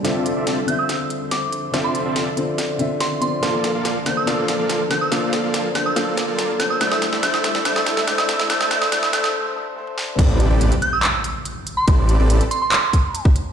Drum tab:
CC |----------------|----------------|----------------|----------------|
HH |x-x-x-x-x-x-x-x-|x-x-x-x-x-x-x-x-|x-x-x-x-x-x-x-x-|x-x-x-x-x-x-x-x-|
CP |----------------|----------------|----------------|----------------|
SD |o---o---o---o---|o---o---o---o---|o-o-o-o-o-o-o-o-|o-o-o-o-o-o-o-o-|
T1 |----------------|----------------|----------------|----------------|
T2 |----------------|----------------|----------------|----------------|
BD |----------------|----------------|----------------|----------------|

CC |----------------|----------------|x---------------|----------------|
HH |x-x-x-x-x-x-x-x-|x-x-x-x---------|x-x-xxx-x-x-x-x-|x-x-xxx-x-x-x-x-|
CP |----------------|----------------|--------x-------|--------x-------|
SD |oooooooooooooooo|oooooooo------o-|----------------|----------------|
T1 |----------------|-------------o--|----------------|----------------|
T2 |----------------|---------------o|----------------|----------------|
BD |----------------|----------------|o---------------|o---------o--o--|